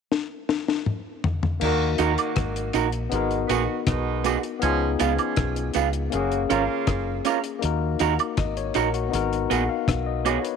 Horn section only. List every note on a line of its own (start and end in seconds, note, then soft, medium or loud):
1.61 1.91 D#3 medium
1.61 1.91 A#3 medium
1.61 1.91 F#4 loud
1.99 2.70 D#3 medium
1.99 2.70 A#3 medium
1.99 2.71 F#4 medium
3.11 3.41 B2 medium
3.11 3.41 G#3 medium
3.11 3.41 D#4 medium
3.48 3.79 D#3 medium
3.48 3.78 B3 medium
3.48 3.78 F#4 medium
3.87 4.40 B2 medium
3.87 4.40 G#3 medium
3.87 4.40 D#4 medium
4.62 4.92 F3 loud
4.62 4.92 C#4 loud
4.62 4.92 G#4 loud
5.00 5.71 F3 medium
5.00 5.71 C#4 medium
5.00 5.71 G#4 medium
6.12 6.42 C#3 medium
6.12 6.42 A#3 medium
6.12 6.42 F#4 medium
6.49 7.21 C#3 medium
6.49 7.21 A#3 medium
6.49 7.21 F4 medium